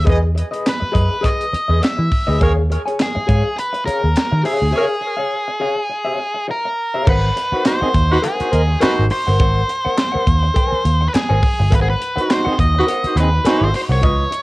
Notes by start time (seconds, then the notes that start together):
0.05 E2 G#4 B4 D#5, kick, closed hi-hat
0.23 muted clean electric guitar stroke
0.35 muted clean electric guitar stroke, closed hi-hat
0.51 G#4 B4 D#5, closed hi-hat
0.66 B4, snare, clap, closed hi-hat
0.80 muted clean electric guitar stroke, muted picked electric bass stroke
0.92 F#2 G#4 B4 D#5, kick, closed hi-hat
1.09 muted clean electric guitar stroke
1.21 G#4 B4 D#5, kick, closed hi-hat
1.25 D#5
1.41 closed hi-hat
1.53 muted clean electric guitar stroke, muted picked electric bass stroke, closed hi-hat
1.68 E2 G#4 B4 D#5
1.81 E5, muted clean electric guitar stroke, snare, clap, closed hi-hat
1.97 E3, muted clean electric guitar stroke
2.12 kick, open hi-hat
2.27 D2 G#4 B4 D#5
2.39 D#2 G#4 A#4 C#5 F5, kick, closed hi-hat
2.58 muted clean electric guitar stroke
2.70 muted clean electric guitar stroke, closed hi-hat
2.86 G#4 C#5 G#5, closed hi-hat
2.99 G#4, snare, clap, closed hi-hat
3.15 muted clean electric guitar stroke, muted picked electric bass stroke
3.27 G#2 G#4 C#5 F5, kick, closed hi-hat
3.44 muted clean electric guitar stroke
3.56 B4, muted clean electric guitar stroke, closed hi-hat
3.73 muted clean electric guitar stroke, closed hi-hat
3.86 G#4 A#4 C#5 F5, muted picked electric bass stroke, closed hi-hat
4.03 D#2, muted clean electric guitar stroke
4.16 snare, clap, closed hi-hat
4.32 D#3, muted clean electric guitar stroke
4.43 G#4 C#5 F5, open hi-hat
4.60 D2, muted clean electric guitar stroke
4.71 G#4 A#4 C#5 F5
4.87 muted clean electric guitar stroke
5.01 muted clean electric guitar stroke
5.17 G#4 C#5 F5
5.48 muted clean electric guitar stroke
5.60 G#4 C#5 F5
5.76 muted clean electric guitar stroke
5.90 muted clean electric guitar stroke
6.05 G#4 C#5 F5
6.19 muted clean electric guitar stroke
6.34 muted clean electric guitar stroke
6.48 A#4, muted clean electric guitar stroke
6.65 muted clean electric guitar stroke
6.94 G#4 C#5 F5
7.06 G#1 A#4 B4 C5 F#5, kick, crash
7.36 muted clean electric guitar stroke, closed hi-hat
7.52 D#4 F#4 A#4 B4 C5 F#5, muted picked electric bass stroke
7.65 D#4 F#4 C5, muted clean electric guitar stroke, snare, clap, closed hi-hat
7.80 C4 D#4 G#4 A#4 C5 F#5, muted picked electric bass stroke
7.93 D#2, muted clean electric guitar stroke, kick, closed hi-hat
8.10 D#4 F#4 B4, muted clean electric guitar stroke
8.22 G#4 A4 B4 F5, closed hi-hat
8.34 A#4 C5 F#5
8.39 D#4 F#4 C5, muted picked electric bass stroke, closed hi-hat
8.51 D#2 A#4 C5 D#5, muted clean electric guitar stroke, closed hi-hat
8.67 muted clean electric guitar stroke
8.80 D#4 F#4 A#4 B4 C5 G#5, muted picked electric bass stroke, snare, clap, closed hi-hat
8.99 G#1
9.10 C5, muted clean electric guitar stroke, open hi-hat
9.27 G1 A#4 C5 F#5
9.39 G#1 A#4 C5 F#5, kick, closed hi-hat
9.68 muted clean electric guitar stroke, closed hi-hat
9.85 A#4 C5 F#5, muted picked electric bass stroke
9.97 muted clean electric guitar stroke, snare, clap, closed hi-hat
10.12 A#4 C5 F#5, muted picked electric bass stroke
10.26 D#2, muted clean electric guitar stroke, kick, closed hi-hat
10.43 muted clean electric guitar stroke
10.54 A4 B4 G5, kick, closed hi-hat
10.66 A#4 C5 G#5
10.72 muted picked electric bass stroke
10.85 D#2, muted clean electric guitar stroke, closed hi-hat
11.01 muted clean electric guitar stroke
11.08 B4
11.14 G#4, muted clean electric guitar stroke, muted picked electric bass stroke, snare, clap, closed hi-hat
11.29 G#1 A#4 C5 G#5
11.42 muted clean electric guitar stroke, kick, open hi-hat
11.60 G1, muted clean electric guitar stroke
11.71 G#1 A#4 C5 F#5, kick, closed hi-hat
11.75 B4
11.81 G#4
11.90 B4
12.00 muted clean electric guitar stroke, closed hi-hat
12.16 D#4 F#4 A#4 B4 C5 F#5, muted picked electric bass stroke, closed hi-hat
12.28 D#4 F#4 C5, muted clean electric guitar stroke, snare, clap, closed hi-hat
12.45 C4 D#4 G#4 A#4 C5 F#5, muted picked electric bass stroke
12.59 D#2 D#5, muted clean electric guitar stroke, kick, closed hi-hat
12.75 D#4 F#4 B4, muted clean electric guitar stroke
12.87 A#4 C5 F#5, closed hi-hat
13.04 D#4 F#4 C5, muted picked electric bass stroke, closed hi-hat
13.16 D#2 C4 D#4 G#4 B4, muted clean electric guitar stroke, closed hi-hat
13.33 muted clean electric guitar stroke
13.45 D#4 F#4 A#4 C5 G#5, muted picked electric bass stroke, snare, clap, closed hi-hat
13.61 G#1 C5
13.73 C5, muted clean electric guitar stroke, open hi-hat
13.89 C2 A#4 C5 C#5 F#5
14.01 C#2 F4 B4 D#5, kick, closed hi-hat
14.31 muted clean electric guitar stroke, closed hi-hat